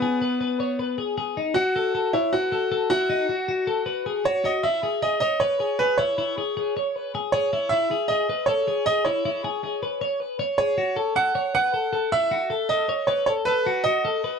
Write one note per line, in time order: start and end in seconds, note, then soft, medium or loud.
0.00 0.93 B3 loud
0.00 0.21 G#4 loud
0.22 0.40 B4 medium
0.41 0.60 B4 medium
0.60 0.79 C#5 medium
0.79 0.98 B4 medium
0.98 1.16 G#4 medium
1.18 1.37 G#4 medium
1.37 1.56 D#4 medium
1.54 2.15 F#4 loud
1.54 1.75 F#4 medium
1.76 1.94 A4 medium
1.95 2.14 A4 medium
2.13 2.34 E4 medium
2.13 2.33 C#5 medium
2.33 2.88 F#4 loud
2.33 2.52 B4 medium
2.52 2.70 A4 medium
2.72 2.90 A4 medium
2.90 3.10 E4 medium
2.90 4.21 F#4 loud
3.10 3.29 D#4 loud
3.29 3.47 F#4 medium
3.48 3.68 F#4 medium
3.67 3.86 A4 medium
3.86 4.06 B4 medium
4.06 4.26 G#4 medium
4.25 4.43 F#4 loud
4.25 4.45 C#5 loud
4.44 4.64 F#4 medium
4.44 4.65 D#5 loud
4.63 4.83 E4 loud
4.63 5.03 E5 loud
4.83 5.01 G#4 medium
5.02 5.22 G#4 medium
5.02 5.19 D#5 medium
5.20 5.41 C#5 medium
5.20 5.39 D#5 loud
5.40 5.60 B4 medium
5.40 5.80 C#5 loud
5.60 5.79 G#4 medium
5.79 5.99 G#4 medium
5.79 5.99 B4 loud
5.98 6.17 E4 medium
5.98 7.09 C#5 loud
6.18 6.37 E4 loud
6.38 6.56 G#4 medium
6.57 6.76 G#4 medium
6.77 6.96 C#5 medium
6.96 7.14 B4 medium
7.15 7.33 G#4 medium
7.32 7.53 G#4 loud
7.32 7.72 C#5 loud
7.53 7.71 E4 loud
7.69 7.91 E4 loud
7.69 8.10 E5 loud
7.91 8.09 G#4 medium
8.08 8.29 G#4 medium
8.08 8.45 D#5 medium
8.29 8.48 B4 medium
8.46 8.67 A4 medium
8.46 8.83 C#5 loud
8.68 8.86 G#4 medium
8.86 9.06 G#4 loud
8.86 9.04 D#5 loud
9.05 9.24 E4 medium
9.05 10.16 C#5 medium
9.25 9.44 E4 loud
9.44 9.62 G#4 medium
9.64 9.82 G#4 medium
9.83 10.01 B4 medium
10.01 10.20 C#5 medium
10.20 10.39 B4 medium
10.39 10.59 C#5 medium
10.58 10.77 G#4 medium
10.58 11.18 C#5 loud
10.78 10.97 F#4 loud
10.96 11.14 A4 medium
11.16 11.35 A4 medium
11.16 11.53 F#5 loud
11.35 11.54 C#5 medium
11.55 11.73 B4 medium
11.55 12.14 F#5 loud
11.74 11.92 A4 medium
11.93 12.12 A4 loud
12.12 12.32 E4 medium
12.12 12.72 E5 loud
12.31 12.51 F#4 medium
12.50 12.69 A4 medium
12.69 12.89 A4 medium
12.69 13.09 D#5 medium
12.89 13.08 C#5 medium
13.07 13.27 B4 loud
13.07 13.25 C#5 medium
13.26 13.46 A4 medium
13.26 13.31 C#5 loud
13.45 13.66 A4 medium
13.45 13.82 B4 loud
13.67 13.85 F#4 medium
13.84 14.05 F#4 medium
13.84 14.39 D#5 loud
14.05 14.24 A4 medium
14.24 14.39 B4 medium